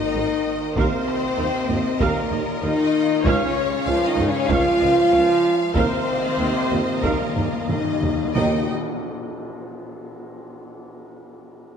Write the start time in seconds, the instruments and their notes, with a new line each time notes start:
Already playing: trombone section D#3, string section A#3 D#4 A#4 C5, french horn section D#4, violin section D#5
0.14 double bass section G#1, tuba G#1, cello section G#2, viola section A#4 C5
0.74 cello section D#2, double bass section D#2, tuba D#2, trombone section C3, french horn section C4, string section F4 D#5, viola section A#4 F5, violin section C5, taiko
1.08 taiko rim
1.38 tuba D#2, double bass section D#2, cello section D#2, viola section A#4 F5
1.69 double bass section D#2, cello section D#2, tuba D#2, viola section F4 D#5, taiko low-mid
1.99 cello section D#2, tuba D#2, double bass section D#2, trombone section A#2, french horn section A#3, violin section A#4, viola section A#4 F5, taiko
2.30 cello section D#2, double bass section D#2, tuba D#2, viola section G#4 D#5
2.62 cello section D#2, double bass section D#2, tuba D#2, trombone section D#3, french horn section D#4, viola section A#4 F5, violin section D#5
3.23 cello section C#2, double bass section C#2, tuba C#2, trombone section C#3, string section G#3 C#4 F5, french horn section C#4, violin section C#5, viola section C#5 F5, taiko
3.86 cello section C#2, double bass section C#2, tuba C#2, trombone section F3, french horn section F4, viola section C#5 F5, violin section F5
4.07 trombone section D#3, french horn section D#4, violin section D#5
4.18 cello section C#2, tuba C#2, double bass section C#2, viola section G#4 C#5, taiko low-mid
4.27 trombone section C#3, french horn section C#4, violin section C#5
4.49 cello section C#2, tuba C#2, double bass section C#2, trombone section F3, french horn section F4, viola section C#5 F5, violin section F5, taiko
4.80 cello section C#2, double bass section C#2, tuba C#2, viola section C5 D#5
5.12 cello section C#2, double bass section C#2, tuba C#2, viola section C#5 F5
5.74 cello section D#2, double bass section D#2, tuba D#2, trombone section C3, timpani D#3, string section A#3 F4 D#5, french horn section C4, viola section A#4 F5, violin section C5, taiko
5.83 timpani D#3
5.90 timpani D#3
5.98 timpani D#3
6.06 timpani D#3
6.14 timpani D#3
6.22 timpani D#3
6.29 timpani D#3
6.37 double bass section D#2, cello section D#2, tuba D#2, timpani D#3, viola section A#4 F5
6.45 timpani D#3
6.60 timpani D#3
6.67 cello section D#2, timpani D#3
6.71 double bass section D#2, tuba D#2, timpani D#3, viola section F4 D#5, taiko low-mid
6.90 timpani D#3
6.98 timpani D#3
7.02 cello section D#2, tuba D#2, double bass section D#2, trombone section A#2, timpani D#3, french horn section A#3, violin section A#4, viola section A#4 F5, taiko
7.13 timpani D#3
7.22 timpani D#3
7.29 timpani D#3
7.36 double bass section D#2, cello section D#2, tuba D#2, timpani D#3, viola section G#4 D#5, taiko low-mid
7.45 timpani D#3
7.53 timpani D#3
7.60 timpani D#3
7.68 cello section D#2, double bass section D#2, tuba D#2, timpani D#3, trombone section D#3, french horn section D#4, viola section A#4 F5, violin section D#5, taiko low-mid
7.77 timpani D#3
7.85 timpani D#3
7.93 timpani D#3
8.01 timpani D#3, taiko low
8.09 timpani D#3
8.17 timpani D#3
8.25 timpani D#3
8.34 cello section D#2, double bass section D#2, tuba D#2, timpani D#3, trombone section D#3, string section A#3 D#4 D#5 G5, french horn section D#4, viola section G4 D#5, violin section D#5, tam-tam